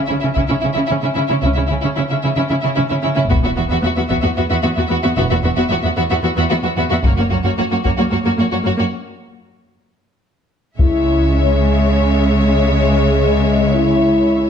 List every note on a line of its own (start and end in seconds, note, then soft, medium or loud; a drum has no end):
0.06 0.13 E4 soft
0.06 0.12 E5 soft
0.10 0.16 C#3 soft
0.10 0.15 C#4 soft
0.19 0.26 E4 soft
0.19 0.25 E5 soft
0.24 0.29 C#3 soft
0.24 0.29 C#4 soft
0.34 0.42 C#3 soft
0.34 0.42 C#4 soft
0.34 0.40 E4 soft
0.34 0.39 E5 soft
0.34 taiko soft
0.47 0.56 C#3 soft
0.47 0.55 C#4 soft
0.47 0.54 E4 soft
0.47 0.53 E5 soft
0.60 0.66 E4 soft
0.60 0.66 E5 soft
0.64 0.69 C#3 soft
0.64 0.69 C#4 soft
0.72 0.81 C#3 soft
0.72 0.79 E4 soft
0.72 0.78 E5 soft
0.77 0.82 C#4 soft
0.86 0.93 E4 soft
0.86 0.92 E5 soft
0.90 0.96 C#3 soft
0.90 0.95 C#4 soft
1.01 1.08 C#3 soft
1.01 1.09 C#4 soft
1.01 1.08 E4 soft
1.01 1.06 E5 soft
1.14 1.21 C#3 soft
1.14 1.22 C#4 soft
1.14 1.20 E4 soft
1.14 1.20 E5 soft
1.27 1.35 C#3 soft
1.27 1.36 C#4 soft
1.27 1.34 E4 soft
1.27 1.33 E5 soft
1.41 1.55 C#2 soft
1.41 1.48 C#3 soft
1.41 1.50 C#4 soft
1.41 1.47 E4 soft
1.41 1.47 E5 soft
1.54 1.62 C#3 soft
1.54 1.62 C#4 soft
1.54 1.61 E4 soft
1.54 1.60 E5 soft
1.67 1.76 C#3 soft
1.67 1.73 E4 soft
1.67 1.73 E5 soft
1.71 1.76 C#4 soft
1.81 1.89 C#3 soft
1.81 1.89 C#4 medium
1.81 1.87 E4 soft
1.81 1.87 E5 soft
1.95 2.02 C#3 soft
1.95 2.03 C#4 soft
1.95 2.01 E4 soft
1.95 2.01 E5 soft
2.09 2.16 C#3 soft
2.09 2.16 C#4 soft
2.09 2.15 E4 soft
2.09 2.15 E5 soft
2.22 2.29 C#3 soft
2.22 2.30 C#4 soft
2.22 2.29 E4 soft
2.22 2.28 E5 soft
2.35 2.42 C#3 soft
2.35 2.44 C#4 soft
2.35 2.42 E4 soft
2.35 2.41 E5 soft
2.49 2.55 C#3 soft
2.49 2.56 C#4 soft
2.49 2.55 E4 soft
2.49 2.54 E5 soft
2.61 2.69 C#3 medium
2.61 2.69 C#4 soft
2.61 2.68 E4 soft
2.61 2.67 E5 medium
2.75 2.83 C#3 soft
2.75 2.82 C#4 soft
2.75 2.81 E4 soft
2.75 2.81 E5 soft
2.89 2.96 C#3 soft
2.89 2.96 C#4 soft
2.89 2.95 E4 soft
2.89 2.95 E5 soft
3.02 3.09 C#3 soft
3.02 3.08 C#4 soft
3.02 3.08 E4 soft
3.02 3.08 E5 soft
3.15 3.23 C#3 soft
3.15 3.21 C#4 soft
3.15 3.22 E4 soft
3.15 3.21 E5 soft
3.29 3.42 E1 soft
3.29 3.36 E2 soft
3.29 3.35 B3 soft
3.29 3.35 F#4 soft
3.29 3.35 E5 soft
3.29 taiko soft
3.43 3.49 E2 soft
3.43 3.48 B3 soft
3.43 3.50 F#4 soft
3.43 3.49 E5 soft
3.56 3.62 E2 soft
3.56 3.62 B3 soft
3.56 3.62 F#4 soft
3.56 3.63 E5 soft
3.69 3.76 E2 medium
3.69 3.75 B3 medium
3.69 3.76 F#4 medium
3.69 3.75 E5 medium
3.82 3.89 E2 soft
3.82 3.87 B3 soft
3.82 3.90 F#4 soft
3.82 3.89 E5 soft
3.96 4.02 E2 soft
3.96 4.02 B3 soft
3.96 4.02 F#4 soft
3.96 4.01 E5 soft
4.08 4.15 E2 soft
4.08 4.15 B3 medium
4.08 4.15 F#4 soft
4.08 4.14 E5 soft
4.08 taiko soft
4.22 4.29 E2 soft
4.22 4.28 B3 soft
4.22 4.28 F#4 soft
4.22 4.28 E5 soft
4.36 4.43 E2 soft
4.36 4.42 B3 soft
4.36 4.43 F#4 soft
4.36 4.42 E5 soft
4.49 4.56 E2 medium
4.49 4.56 B3 medium
4.49 4.56 F#4 medium
4.49 4.55 E5 medium
4.62 4.69 E2 soft
4.62 4.69 B3 soft
4.62 4.69 F#4 soft
4.62 4.68 E5 soft
4.74 4.82 E2 soft
4.74 4.82 B3 soft
4.74 4.83 F#4 soft
4.74 4.80 E5 soft
4.87 4.96 E2 soft
4.87 4.95 B3 medium
4.87 4.96 F#4 soft
4.87 4.93 E5 soft
5.03 5.09 E2 soft
5.03 5.10 B3 soft
5.03 5.09 F#4 soft
5.03 5.08 E5 soft
5.15 5.30 E1 medium
5.15 5.23 E2 medium
5.15 5.23 B3 medium
5.15 5.23 F#4 medium
5.15 5.21 E5 medium
5.30 5.36 E2 soft
5.30 5.36 B3 soft
5.30 5.37 F#4 soft
5.30 5.36 E5 soft
5.43 5.48 E2 soft
5.43 5.49 B3 soft
5.43 5.49 F#4 soft
5.43 5.49 E5 soft
5.56 5.61 E2 medium
5.56 5.63 B3 medium
5.56 5.62 F#4 medium
5.56 5.61 E5 medium
5.69 5.75 E2 soft
5.69 5.76 B3 soft
5.69 5.77 F#4 soft
5.69 5.74 E5 soft
5.82 5.89 E2 soft
5.82 5.89 B3 soft
5.82 5.90 F#4 soft
5.82 5.88 E5 soft
5.96 6.02 E2 medium
5.96 6.02 B3 medium
5.96 6.02 F#4 medium
5.96 6.02 E5 medium
6.10 6.16 E2 soft
6.10 6.16 B3 soft
6.10 6.16 F#4 soft
6.10 6.15 E5 soft
6.23 6.29 E2 soft
6.23 6.29 B3 soft
6.23 6.29 F#4 soft
6.23 6.29 E5 soft
6.36 6.43 E2 medium
6.36 6.42 B3 medium
6.36 6.43 F#4 medium
6.36 6.42 E5 medium
6.49 6.56 E2 soft
6.49 6.56 B3 soft
6.49 6.55 F#4 soft
6.49 6.56 E5 soft
6.63 6.69 E2 soft
6.63 6.69 B3 soft
6.63 6.69 F#4 soft
6.63 6.70 E5 soft
6.76 6.82 E2 medium
6.76 6.83 B3 medium
6.76 6.82 F#4 medium
6.76 6.84 E5 medium
6.90 6.96 E2 soft
6.90 6.97 B3 soft
6.90 6.96 F#4 soft
6.90 6.98 E5 soft
7.03 7.17 F#1 medium
7.03 7.08 F#2 medium
7.03 7.11 A#3 medium
7.03 7.09 F#4 soft
7.03 taiko medium
7.08 7.12 C#5 medium
7.16 7.22 F#2 soft
7.16 7.24 A#3 soft
7.16 7.23 F#4 soft
7.16 7.25 C#5 soft
7.30 7.35 F#2 soft
7.30 7.37 A#3 soft
7.30 7.36 F#4 soft
7.30 7.38 C#5 soft
7.43 7.49 F#2 soft
7.43 7.50 A#3 medium
7.43 7.50 F#4 medium
7.43 7.51 C#5 medium
7.57 7.63 F#2 soft
7.57 7.63 A#3 soft
7.57 7.63 F#4 soft
7.57 7.64 C#5 soft
7.71 7.76 F#2 soft
7.71 7.77 A#3 soft
7.71 7.77 F#4 soft
7.71 7.77 C#5 soft
7.84 7.90 F#2 soft
7.84 7.90 A#3 medium
7.84 7.90 F#4 soft
7.84 7.91 C#5 soft
7.84 taiko soft
7.97 8.03 F#2 soft
7.97 8.04 A#3 soft
7.97 8.02 F#4 soft
7.97 8.04 C#5 soft
8.11 8.16 F#2 soft
8.11 8.17 A#3 soft
8.11 8.17 F#4 soft
8.11 8.17 C#5 soft
8.24 8.30 F#2 medium
8.24 8.30 A#3 soft
8.24 8.31 F#4 soft
8.24 8.30 C#5 soft
8.37 8.44 F#2 soft
8.37 8.43 A#3 soft
8.37 8.44 F#4 soft
8.37 8.44 C#5 soft
8.51 8.58 F#2 soft
8.51 8.57 A#3 soft
8.51 8.57 F#4 soft
8.51 8.57 C#5 soft
8.63 8.70 F#2 soft
8.63 8.69 A#3 soft
8.63 8.71 F#4 soft
8.63 8.70 C#5 soft
8.77 8.84 F#2 soft
8.77 8.82 A#3 soft
8.77 8.84 F#4 soft
8.77 8.84 C#5 soft
10.78 14.49 C#2 soft
10.78 14.49 C#3 soft
10.78 14.48 G#3 soft
10.78 11.29 E4 soft
10.78 14.49 C#5 soft
10.78 14.49 E5 soft
10.78 taiko medium
11.34 12.64 C#4 medium
12.68 13.72 G#3 medium
13.74 14.50 E4 medium